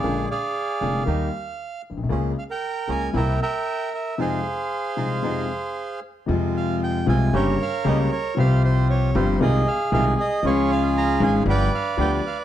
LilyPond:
<<
  \new Staff \with { instrumentName = "Bandoneon" } { \time 4/4 \key f \minor \tempo 4 = 116 << { f''8 f''2. r8 | r8 f''16 g''8. aes''8 g''8 g''4 e''8 | f''2.~ f''8 r8 | r8 f''8 g''8 aes''8 g''8 f''8 ees''8 des''8 |
f''8 c''8 des''8 c''8 ees''8 f''8 f''8 ees''8 | des''8 f''8 bes''8 aes''8 g''8 f''8 g''8 f''8 | } \\ { <aes' d''>8 <aes' d''>4. r2 | r8. bes'4~ bes'16 <bes' e''>8 <bes' e''>4. | <aes' c''>2.~ <aes' c''>8 r8 | r2 <bes' des''>2 |
c''2 aes'2 | <f' aes'>2 <b' d''>2 | } >> }
  \new Staff \with { instrumentName = "Bandoneon" } { \time 4/4 \key f \minor <bes d' aes'>8 r4 <bes d' aes'>8 <bes ees' g'>8 r4. | <bes des' aes'>8 r4 <bes des' aes'>8 <bes c' e'>8 r4. | <aes ees' f'>8 r4 <aes ees' f'>8 <aes ees' f'>8 r4. | <aes c' f'>4. <aes c' f'>8 <bes des' g'>8 r8 <bes des' g'>8 r8 |
<c' f' g'>4. <c' f' g'>8 <ees' f' aes'>8 r8 <ees' f' aes'>8 r8 | <des' f' aes'>4. <des' f' aes'>8 <b f' g'>8 r8 <b f' g'>8 r8 | }
  \new Staff \with { instrumentName = "Grand piano" } { \clef bass \time 4/4 \key f \minor <bes,, bes, d aes bes f'>8 r4 <f,, f, d aes bes f'>8 <ees, ees g bes g'>8 r4 r32 bes,,32 b,,32 c,32 | <des, des aes bes f'>8 r4 <des, des aes bes f'>8 <c, c g bes e'>8 r4. | <f, c f aes ees'>8 r4 <c, c f aes ees'>8 <f, c f aes ees'>8 r4. | <f, c f aes f'>4. <c, c f aes f'>8 <g,, g, des g bes g'>8 r8 <des, des g bes g'>8 r8 |
<c, c f g c' g'>4. <g,, g, f g c' g'>8 <c, c ees aes c' f'>8 r8 <c, c ees aes c' f'>8 r8 | <des, des f aes des' aes'>4. <aes,, aes, f aes des' aes'>8 <g,, g, f b d' g'>8 r8 <d, d f b d' g'>8 r8 | }
  \new Staff \with { instrumentName = "Upright bass" } { \clef bass \time 4/4 \key f \minor bes,,16. r4 r32 f,,16. r32 ees,16. r4 r16 bes,,32 b,,32 c,32 | des,16. r4 r32 des,16. r32 c,16. r4. r32 | r1 | f,4~ f,16. r32 c,16. r32 g,,16. r8 r32 des,16. r8 r32 |
c,4~ c,16. r32 g,,16. r32 c,16. r8 r32 c,16. r8 r32 | des,4~ des,16. r32 aes,,16. r32 g,,16. r8 r32 d,16. r8 r32 | }
>>